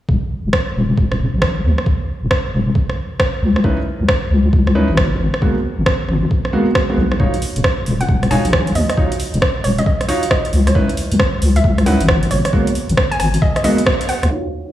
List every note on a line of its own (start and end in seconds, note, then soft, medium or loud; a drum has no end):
0.09 0.19 D#1 loud
0.09 kick loud
0.45 0.51 D#1 loud
0.53 kick loud
0.53 cross-stick loud
0.75 0.93 D#1 loud
0.98 1.28 D#1 loud
0.98 kick loud
1.12 cross-stick medium
1.34 1.61 A#1 medium
1.42 kick loud
1.42 cross-stick loud
1.64 1.74 D#2 loud
1.78 cross-stick medium
1.86 kick loud
2.23 2.29 D#1 loud
2.31 kick loud
2.31 cross-stick loud
2.53 2.71 D#1 loud
2.75 kick loud
2.90 cross-stick soft
3.20 kick loud
3.20 cross-stick loud
3.42 3.60 C#2 medium
3.56 cross-stick medium
3.64 3.74 C#2 medium
3.64 3.76 C#4 medium
3.64 3.76 D#4 medium
3.64 3.76 E4 medium
3.64 3.76 B4 medium
3.64 kick loud
4.00 4.06 C#2 loud
4.09 kick loud
4.09 cross-stick loud
4.31 4.48 C#2 loud
4.53 4.83 C#2 loud
4.53 kick loud
4.67 cross-stick medium
4.75 4.87 C#4 medium
4.75 4.87 D#4 medium
4.75 4.87 E4 medium
4.75 4.87 B4 medium
4.89 5.16 G#1 medium
4.97 kick loud
4.97 cross-stick loud
5.20 5.30 G#1 loud
5.34 cross-stick medium
5.42 5.54 G#3 medium
5.42 5.54 A#3 medium
5.42 5.54 B3 medium
5.42 5.54 F#4 medium
5.42 kick loud
5.78 5.84 G#1 loud
5.86 kick loud
5.86 cross-stick loud
6.09 6.26 G#1 loud
6.09 cross-stick soft
6.31 kick loud
6.45 cross-stick soft
6.53 6.65 G#3 medium
6.53 6.65 A#3 medium
6.53 6.65 B3 medium
6.53 6.65 F#4 medium
6.75 kick loud
6.75 cross-stick loud
6.90 6.96 G#3 medium
6.90 6.96 A#3 medium
6.90 6.96 B3 medium
6.90 6.96 F#4 medium
6.97 7.15 B1 medium
7.12 cross-stick medium
7.20 7.30 D#1 medium
7.20 7.32 D#4 medium
7.20 7.32 F4 medium
7.20 7.32 F#4 medium
7.20 7.32 C#5 medium
7.20 kick loud
7.34 closed hi-hat medium
7.42 open hi-hat loud
7.56 7.62 D#1 loud
7.56 closed hi-hat medium
7.64 kick loud
7.64 cross-stick loud
7.86 8.04 D#1 loud
7.86 open hi-hat medium
8.01 8.19 F#5 medium
8.01 closed hi-hat medium
8.09 8.39 D#1 loud
8.09 kick loud
8.23 cross-stick soft
8.23 closed hi-hat soft
8.31 8.43 D#4 medium
8.31 8.43 F4 medium
8.31 8.43 F#4 medium
8.31 8.43 C#5 medium
8.31 8.51 G#5 medium
8.31 open hi-hat medium
8.45 8.72 A#1 medium
8.45 closed hi-hat medium
8.53 kick loud
8.53 cross-stick loud
8.67 closed hi-hat soft
8.75 8.85 D#2 loud
8.75 8.84 D#5 medium
8.75 open hi-hat loud
8.89 8.95 D#5 medium
8.89 cross-stick medium
8.89 closed hi-hat medium
8.97 9.10 D#4 medium
8.97 9.10 F4 medium
8.97 9.10 F#4 medium
8.97 9.10 C#5 medium
8.97 kick loud
9.12 closed hi-hat medium
9.20 open hi-hat loud
9.34 9.40 D#1 loud
9.34 closed hi-hat medium
9.42 kick loud
9.42 cross-stick loud
9.64 9.82 D#1 loud
9.64 9.76 C#5 medium
9.64 open hi-hat medium
9.78 9.84 D#5 medium
9.78 closed hi-hat medium
9.86 9.95 D#5 medium
9.86 kick loud
10.01 cross-stick soft
10.01 closed hi-hat soft
10.08 10.21 D#4 medium
10.08 10.21 F4 medium
10.08 10.21 F#4 medium
10.08 10.21 C#5 medium
10.08 open hi-hat loud
10.23 closed hi-hat medium
10.31 10.51 D#5 medium
10.31 kick loud
10.31 cross-stick loud
10.45 closed hi-hat medium
10.53 10.71 C#2 medium
10.53 open hi-hat loud
10.67 10.97 C#5 medium
10.67 cross-stick medium
10.67 closed hi-hat medium
10.75 10.85 C#2 loud
10.75 10.87 C#4 medium
10.75 10.87 D#4 medium
10.75 10.87 E4 medium
10.75 10.87 B4 medium
10.75 kick loud
10.89 closed hi-hat medium
10.97 open hi-hat loud
11.12 11.17 C#2 loud
11.12 closed hi-hat medium
11.20 kick loud
11.20 cross-stick loud
11.42 11.60 C#2 loud
11.42 open hi-hat loud
11.56 11.75 E5 loud
11.56 closed hi-hat medium
11.64 11.94 C#2 loud
11.64 kick loud
11.78 cross-stick soft
11.78 closed hi-hat soft
11.86 11.98 C#4 medium
11.86 11.98 D#4 medium
11.86 11.98 E4 medium
11.86 11.98 B4 medium
11.86 12.07 F#5 medium
11.86 open hi-hat loud
12.01 12.27 G#1 medium
12.01 closed hi-hat medium
12.08 kick loud
12.08 cross-stick loud
12.23 closed hi-hat medium
12.31 12.41 G#1 loud
12.31 12.40 C#5 medium
12.31 open hi-hat loud
12.45 12.50 C#5 medium
12.45 cross-stick medium
12.45 closed hi-hat medium
12.53 12.65 G#3 medium
12.53 12.65 A#3 medium
12.53 12.65 B3 medium
12.53 12.65 F#4 medium
12.53 kick loud
12.67 closed hi-hat medium
12.75 open hi-hat loud
12.89 12.95 G#1 loud
12.89 closed hi-hat medium
12.97 kick loud
12.97 cross-stick loud
13.11 13.17 G#5 medium
13.11 closed hi-hat soft
13.20 13.37 G#1 loud
13.20 13.29 G#5 medium
13.20 cross-stick soft
13.20 open hi-hat loud
13.34 closed hi-hat medium
13.42 13.51 D#5 medium
13.42 kick loud
13.56 13.61 D#5 medium
13.56 cross-stick medium
13.56 closed hi-hat soft
13.64 13.76 G#3 medium
13.64 13.76 A#3 medium
13.64 13.76 B3 medium
13.64 13.76 F#4 loud
13.64 13.84 D#5 medium
13.64 open hi-hat loud
13.78 closed hi-hat medium
13.86 kick loud
13.86 cross-stick loud
14.01 closed hi-hat medium
14.09 14.31 F#5 medium
14.09 open hi-hat loud
14.23 14.29 D#2 loud
14.23 cross-stick medium
14.23 closed hi-hat medium
14.31 14.43 D#4 medium
14.31 14.43 F4 medium
14.31 14.43 F#4 medium
14.31 14.43 C#5 medium
14.31 14.72 A#5 medium
14.31 crash medium
14.31 shaker soft
14.45 closed hi-hat soft
14.53 shaker medium
14.68 closed hi-hat medium
14.68 shaker soft